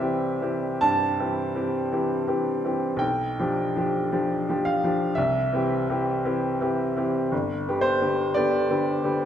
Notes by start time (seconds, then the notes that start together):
Already playing: C2 C4 G4 D5 E5
0.00 E3 C4 G4
0.42 E3 C4 G4
0.81 G2 A5
1.20 E3 C4 G4
1.55 E3 C4 G4
1.92 E3 C4 G4
2.27 E3 C4 G4
2.65 E3 C4 G4
2.96 B1 G5
3.39 F3 D4 G4
3.76 F3 D4 G4
4.12 F3 D4 G4
4.49 F3 D4 G4
4.65 F5
4.84 F3 D4 G4
5.15 C2 E5
5.53 E3 C4 G4
5.90 E3 C4 G4
6.25 E3 C4 G4
6.61 E3 C4 G4
6.97 E3 C4 G4
7.32 G1
7.68 D3 B3 G4
7.81 C5
8.01 D3 B3 G4
8.34 D3 B3 G4 D5
8.69 D3 B3 G4
9.04 D3 B3 G4